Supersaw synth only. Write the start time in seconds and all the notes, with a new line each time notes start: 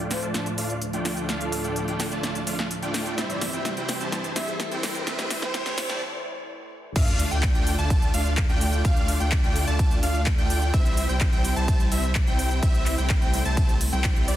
0.00 A3 D4 F4 D5 G5
0.23 A3 D4 F4 D5 A5
0.58 A3 D4 F4 D5 F5
0.93 A3 D4 F4 D5 G5
1.29 A3 D4 F4 D5 F5
1.64 A3 D4 F4 D5 G5
1.88 A3 D4 F4 D5 G5
2.11 A3 D4 F4 D5 A5
2.47 A3 D4 F4 D5 F5
2.82 A3 D4 F4 D5 G5
3.18 G3 C4 E4 C5 E5
3.53 G3 C4 E4 C5 G5
3.77 G3 C4 E4 C5 G5
4.01 G3 C4 E4 C5 A5
4.36 G3 C4 E4 C5 E5
4.71 G3 C4 E4 C5 G5
5.07 G3 C4 E4 C5 E5
5.42 G3 C4 E4 C5 G5
5.66 G3 C4 E4 C5 G5
5.89 G3 C4 E4 C5 A5
6.96 A3 D4 F4 D5 F5
7.31 A3 D4 F4 D5 G5
7.55 A3 D4 F4 D5 G5
7.79 A3 D4 F4 D5 A5
8.14 A3 D4 F4 D5 F5
8.49 A3 D4 F4 D5 G5
8.85 A3 D4 F4 D5 F5
9.20 A3 D4 F4 D5 G5
9.44 A3 D4 F4 D5 G5
9.67 A3 D4 F4 D5 A5
10.03 A3 D4 F4 D5 F5
10.38 A3 D4 F4 D5 G5
10.74 G3 C4 E4 C5 E5
11.09 G3 C4 E4 C5 G5
11.33 G3 C4 E4 C5 G5
11.56 G3 C4 E4 C5 A5
11.92 G3 C4 E4 C5 E5
12.27 G3 C4 E4 C5 G5
12.63 G3 C4 E4 C5 E5
12.98 G3 C4 E4 C5 G5
13.22 G3 C4 E4 C5 G5
13.45 G3 C4 E4 C5 A5
13.93 G3 C4 E4 C5 G5
14.28 G3 C4 E4 C5 D5